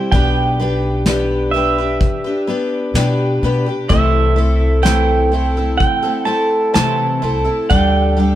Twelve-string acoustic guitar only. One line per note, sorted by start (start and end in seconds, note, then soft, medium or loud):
0.00 0.12 G3 soft
0.00 0.12 C4 soft
0.00 0.13 E4 soft
0.00 0.12 C5 soft
0.12 0.58 B3 medium
0.12 0.59 D4 medium
0.12 0.60 G4 medium
0.12 0.60 B4 medium
0.59 1.05 B3 medium
0.59 1.06 D4 medium
0.59 1.06 G4 medium
0.59 1.07 B4 medium
1.06 1.53 B3 medium
1.06 1.54 D4 medium
1.06 1.54 G4 medium
1.06 1.54 B4 medium
1.54 1.77 B3 medium
1.54 1.78 D4 medium
1.54 1.78 G4 medium
1.54 1.77 B4 medium
1.78 2.26 D4 soft
1.78 2.25 G4 soft
1.78 2.23 B4 soft
2.24 2.47 D4 soft
2.24 2.48 G4 medium
2.24 2.48 B4 medium
2.47 2.94 B3 medium
2.47 2.95 D4 medium
2.47 2.95 G4 medium
2.47 2.96 B4 medium
2.95 3.42 B3 medium
2.95 3.43 D4 medium
2.95 3.43 G4 medium
2.95 3.43 B4 medium
3.43 3.66 B3 medium
3.43 3.67 D4 medium
3.43 3.67 G4 medium
3.43 3.65 B4 medium
3.66 3.90 D4 soft
3.66 3.90 G4 soft
3.66 3.90 B4 soft
3.89 4.37 C3 medium
3.89 4.37 E3 medium
3.89 4.35 A3 medium
3.89 4.36 C4 medium
3.89 4.37 E4 medium
3.89 4.37 A4 medium
4.36 4.82 A3 medium
4.36 4.83 C4 medium
4.36 4.83 E4 medium
4.36 4.84 A4 medium
4.83 5.31 C3 medium
4.83 5.31 E3 medium
4.83 5.30 A3 medium
4.83 5.32 C4 medium
4.83 5.32 E4 medium
4.83 5.32 A4 medium
5.32 5.55 A3 medium
5.32 5.56 C4 medium
5.32 5.56 E4 medium
5.32 5.56 A4 medium
5.57 6.04 A3 soft
5.57 6.03 C4 soft
5.57 6.02 E4 soft
5.57 6.01 A4 soft
6.03 6.24 A3 soft
6.03 6.25 C4 medium
6.03 6.25 E4 soft
6.03 6.27 A4 medium
6.25 6.73 A3 medium
6.25 6.73 C4 medium
6.25 6.74 E4 medium
6.25 6.74 A4 medium
6.74 7.22 C3 medium
6.74 7.22 E3 medium
6.74 7.21 A3 medium
6.74 7.21 C4 medium
6.74 7.22 E4 medium
6.74 7.22 A4 medium
7.22 7.46 A3 medium
7.22 7.45 C4 medium
7.22 7.44 E4 medium
7.22 7.43 A4 medium
7.44 7.70 A3 soft
7.44 7.70 C4 soft
7.44 7.69 E4 soft
7.44 7.69 A4 soft
7.70 8.17 D3 medium
7.70 8.15 G3 medium
7.70 8.16 D4 medium
7.70 8.18 G4 medium
7.70 8.18 A4 medium
8.17 8.35 G3 medium
8.17 8.35 D4 medium
8.17 8.35 G4 medium
8.17 8.35 A4 medium